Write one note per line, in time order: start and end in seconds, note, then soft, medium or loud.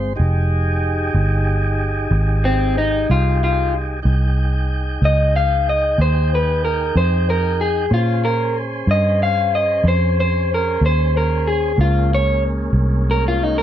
0.00 0.15 G1 medium
0.00 0.13 G#3 medium
0.00 0.13 C4 medium
0.00 0.13 C5 medium
0.16 1.13 F1 medium
0.16 4.00 D#4 medium
0.16 4.00 G4 medium
0.16 4.00 G#4 medium
1.14 2.08 G1 medium
2.11 3.05 G#1 medium
2.45 2.76 C4 medium
2.78 3.08 D#4 medium
3.10 4.03 C2 medium
3.10 3.41 F4 medium
3.44 3.73 F4 medium
4.03 4.99 C2 medium
4.03 7.86 D#4 medium
4.03 7.87 G#4 medium
4.03 7.86 G5 medium
5.02 5.95 C#2 medium
5.02 5.35 D#5 medium
5.36 5.66 F5 medium
5.69 5.99 D#5 medium
5.98 6.92 D#2 medium
5.98 6.31 C5 medium
6.35 6.64 B4 medium
6.65 6.95 A#4 medium
6.96 7.89 F2 medium
6.96 7.27 C5 medium
7.30 7.60 A#4 medium
7.61 7.91 G#4 medium
7.89 8.85 A#2 medium
7.89 11.73 C#4 medium
7.89 11.72 G#4 medium
7.89 11.73 C5 medium
7.94 8.24 F4 medium
8.25 8.55 A#4 medium
8.87 9.81 G2 medium
8.87 9.20 D#5 loud
9.23 9.53 F5 loud
9.55 9.85 D#5 medium
9.84 10.77 F2 medium
9.88 10.17 C5 medium
10.20 10.49 C5 medium
10.54 10.83 A#4 medium
10.81 11.74 D#2 medium
10.86 11.14 C5 medium
11.17 11.46 A#4 medium
11.47 11.77 G#4 medium
11.76 12.71 C#2 medium
11.76 13.63 G#3 medium
11.76 13.63 A#3 medium
11.76 13.63 C#4 medium
11.81 12.10 F4 medium
12.15 12.43 C#5 loud
12.73 13.63 C2 medium
13.11 13.24 A#4 medium
13.28 13.43 F4 medium
13.43 13.56 D#4 medium
13.58 13.63 A#4 medium